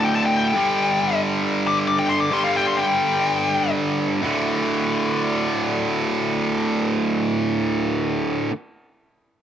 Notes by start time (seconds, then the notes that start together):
Already playing: D2 A2 D3
0.05 G5
0.16 A5
0.26 G5
0.37 G5
0.55 G2 D3 G3
1.67 D6
1.88 D6
1.99 G5
2.09 C6
2.20 D6
2.31 G2 D3 G3 C6
2.44 F5
2.56 G5
2.67 C6
2.77 G5
4.22 D2 A2 D3